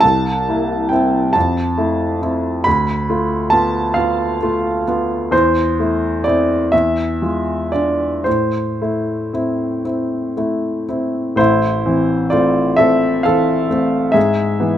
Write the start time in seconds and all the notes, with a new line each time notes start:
0.00 C2 A5
0.49 A#3 E4
0.89 C4 E4 G5
1.33 F2 A5
1.78 A3 E4
2.22 C4 E4
2.64 D2 B5
3.10 A3 F4
3.50 B3 F4 A5
3.94 B3 F4 F5
4.43 A3 F4
4.88 B3 F4
5.31 E2 C5
5.80 A3 E4
6.24 C4 E4 D5
6.72 E2 E5
7.22 G#3 F4
7.72 D4 F4 D5
8.24 A2 C5
8.82 A3 E4
9.33 C4 E4
9.85 C4 E4
10.37 A3 E4
10.89 C4 E4
11.36 A1 A2 E4 C5
11.86 E3 C4
12.30 A3 C4 F4 D5
12.76 A3 C4 A4 E5
13.23 E3 C4 A4 F5
13.70 A3 C4
14.12 G#2 G#4 E5
14.60 E3 B3